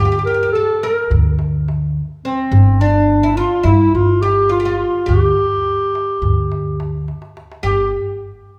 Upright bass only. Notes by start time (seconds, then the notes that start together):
Already playing: D2
1.11 D2
2.52 G1
3.65 G2
3.95 G1
5.08 D2
6.22 D2
7.64 G1